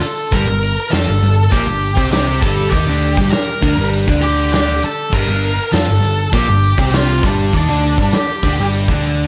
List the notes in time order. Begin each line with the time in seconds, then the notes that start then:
0.01 A4 A5, muted distorted electric guitar stroke, muted overdriven electric guitar stroke, muted picked electric bass stroke, open hi-hat
0.32 G1 G2 G3 A#4 A#5, kick, open hi-hat
0.47 G1 G2
0.63 open hi-hat
0.91 F2 F3 F4 A4 A5, snare, open hi-hat
1.06 G1 G2
1.22 G1 G2, open hi-hat
1.51 A#1 A#2 A#3 G4 G5, kick, open hi-hat
1.67 G1 G2
1.83 open hi-hat
1.95 C2 C3 C4, kick
2.12 G4 G5, snare, open hi-hat
2.41 G1 G2 G3 A4 A5, kick, open hi-hat
2.70 D#2 D#3 D#4 G4 G5, kick, open hi-hat
2.87 D2 D3 D4
3.02 open hi-hat
3.17 G1 G2 G3, kick
3.30 A#4 A#5, muted distorted electric guitar stroke, muted picked electric bass stroke, muted overdriven electric guitar stroke, snare, open hi-hat
3.62 D2 D3 D4, kick, open hi-hat
3.77 G1 G2 G3
3.93 open hi-hat
4.07 D2 D3 D4, kick
4.22 G4 G5, open hi-hat
4.53 G4 G5, snare, open hi-hat
4.81 A4, muted distorted electric guitar stroke, muted overdriven electric guitar stroke, muted picked electric bass stroke, open hi-hat
4.85 A5
5.13 G1 G2 G3 A#4 A#5, kick, crash
5.28 G1 G2
5.43 open hi-hat
5.73 F2 F3 F4 A4 A5, snare, open hi-hat
5.87 G1 G2
6.03 G1 G2, open hi-hat
6.32 A#1 A#2 A#3 G4 G5, kick, open hi-hat
6.48 G1 G2
6.63 open hi-hat
6.78 C2 C3 C4, kick
6.93 F4 F5, snare, open hi-hat
7.23 G1 G2 G3 D4 D5, kick, open hi-hat
7.53 D#2 D#3 D4 D#4 D5, kick, open hi-hat
7.69 D2 D3 D4
7.83 open hi-hat
7.98 G1 G2 G3, kick
8.12 G4 G5, muted overdriven electric guitar stroke, muted distorted electric guitar stroke, muted picked electric bass stroke, snare, open hi-hat
8.42 D2 D3 D4, kick, open hi-hat
8.60 G1 G2 G3
8.73 open hi-hat
8.88 D2 D3 D4, kick
9.03 open hi-hat